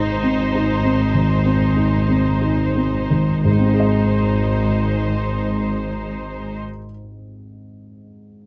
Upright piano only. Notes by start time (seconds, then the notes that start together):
Already playing: G#2 D#4
0.23 C4
0.55 D#4
0.84 C4
1.14 D#3
1.45 C4
1.76 D#4
2.09 C4
2.41 D#4
2.76 C4
3.10 D#3
3.44 G#2
3.51 G#3
3.59 C4
3.66 D#4
3.72 G#4
3.80 D#5